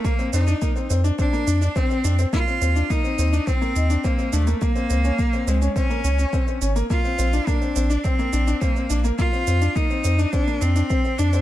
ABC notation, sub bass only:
X:1
M:4/4
L:1/8
Q:1/4=105
K:Fmix
V:1 name="Sub bass" clef=bass
z F,, z F,, z F,, z F,, | z E,, z E,, z E,, z E,, | z _D,, z D,, z D,, z _A,,, | z B,,, z B,,, z B,,, z B,,, |
z F,, z F,, z F,, z F,, |]